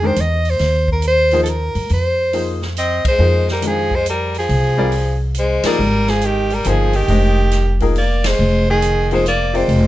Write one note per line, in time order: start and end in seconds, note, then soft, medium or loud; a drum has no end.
0.00 0.13 F2 medium
0.00 0.15 D#3 medium
0.00 0.15 G#3 soft
0.00 0.16 D4 medium
0.00 0.16 G4 medium
0.04 0.16 A#4 medium
0.04 0.22 C5 medium
0.16 0.57 E2 medium
0.16 closed hi-hat soft
0.21 0.52 D#5 medium
0.45 open hi-hat soft
0.50 0.91 C5 loud
0.59 1.71 D#2 medium
0.59 snare soft
0.59 open hi-hat soft
0.88 kick medium
0.92 1.04 A#4 medium
1.02 closed hi-hat soft
1.07 1.41 C5 loud
1.31 1.45 F3 medium
1.31 1.45 A#3 medium
1.31 1.46 D#4 medium
1.31 1.46 G#4 medium
1.31 1.46 C5 medium
1.31 open hi-hat soft
1.43 1.51 A4 medium
1.43 closed hi-hat soft
1.50 1.91 A#4 medium
1.75 1.89 F#2 medium
1.75 open hi-hat soft
1.90 3.01 F2 medium
1.90 2.52 C5 medium
1.90 open hi-hat soft
2.33 2.59 F3 soft
2.33 2.59 A#3 soft
2.33 2.59 D#4 soft
2.33 2.60 G#4 soft
2.33 2.60 C5 medium
2.33 open hi-hat soft
2.62 snare soft
2.77 3.04 C4 medium
2.77 3.04 D#5 medium
2.77 closed hi-hat medium
3.05 3.47 C5 medium
3.05 muted upright bass stroke soft
3.05 kick medium
3.05 ride medium
3.10 3.48 G#3 medium
3.19 4.45 F2 medium
3.19 3.45 F3 soft
3.19 3.45 A#3 soft
3.19 3.45 D#4 soft
3.19 3.46 G#4 soft
3.19 3.46 C5 medium
3.48 3.68 G3 medium
3.48 snare soft
3.53 3.68 A#4 medium
3.62 3.88 D#3 soft
3.62 3.89 G#3 soft
3.62 3.88 D4 soft
3.62 3.89 G4 soft
3.62 3.89 A#4 soft
3.62 closed hi-hat soft
3.66 3.97 F3 medium
3.66 3.97 G#4 medium
3.91 4.08 C5 medium
3.91 kick soft
3.96 4.08 G#3 medium
4.06 4.35 G3 medium
4.06 4.35 A#4 medium
4.06 closed hi-hat soft
4.34 open hi-hat soft
4.39 5.20 F3 medium
4.39 5.19 G#4 medium
4.49 5.61 C2 medium
4.49 open hi-hat soft
4.78 4.91 G3 medium
4.78 4.91 C4 medium
4.78 4.91 F4 medium
4.78 4.91 A#4 medium
4.78 4.92 D5 medium
4.92 open hi-hat soft
5.35 5.69 C5 medium
5.35 closed hi-hat soft
5.39 5.68 G#3 medium
5.63 5.78 F3 medium
5.63 6.12 G3 medium
5.63 5.78 A#3 medium
5.63 5.78 D#4 medium
5.63 5.78 G#4 medium
5.63 6.11 A#4 loud
5.63 5.79 D5 medium
5.63 muted upright bass stroke soft
5.63 snare medium
5.63 ride medium
5.79 6.62 G#1 medium
6.07 6.25 F3 medium
6.07 6.27 G#4 medium
6.07 snare soft
6.21 6.54 D#3 medium
6.21 closed hi-hat soft
6.26 6.56 G4 medium
6.50 6.69 G3 medium
6.50 open hi-hat soft
6.54 6.71 A#4 medium
6.64 7.06 G1 medium
6.64 6.91 F3 medium
6.64 6.97 F3 medium
6.64 6.92 A#3 medium
6.64 6.92 D#4 medium
6.64 6.92 G#4 medium
6.64 6.92 C5 medium
6.64 closed hi-hat medium
6.69 6.97 G#4 medium
6.93 7.82 D#3 medium
6.93 7.82 G4 medium
6.93 open hi-hat soft
7.08 8.34 F1 medium
7.08 7.35 G#3 medium
7.08 7.35 D4 medium
7.08 7.35 G4 medium
7.08 7.35 C5 medium
7.08 7.35 D#5 medium
7.08 open hi-hat soft
7.51 snare soft
7.51 closed hi-hat medium
7.80 7.94 F3 medium
7.80 7.94 A#3 medium
7.80 7.95 D#4 medium
7.80 7.95 G#4 medium
7.80 7.95 A#4 medium
7.80 kick soft
7.80 open hi-hat soft
7.96 8.28 A#3 medium
7.96 8.28 D5 medium
7.96 open hi-hat soft
8.24 8.69 G#3 medium
8.24 8.69 C5 medium
8.24 snare medium
8.24 ride medium
8.39 9.64 F1 medium
8.70 9.09 D#3 medium
8.70 9.09 G#4 medium
8.82 closed hi-hat soft
9.11 9.24 F3 medium
9.11 9.26 G#3 medium
9.11 9.24 A#3 medium
9.11 9.25 D#4 medium
9.11 9.25 G#4 medium
9.11 9.25 C5 medium
9.11 9.26 C5 medium
9.11 open hi-hat soft
9.26 9.58 A#3 medium
9.26 9.58 D5 medium
9.26 closed hi-hat medium
9.53 9.87 G#3 medium
9.53 9.87 C4 medium
9.53 9.87 F4 medium
9.53 9.87 G4 medium
9.53 9.87 A#4 medium
9.53 9.87 C5 medium
9.53 9.87 D5 medium
9.53 open hi-hat soft
9.68 9.87 F1 medium
9.68 open hi-hat soft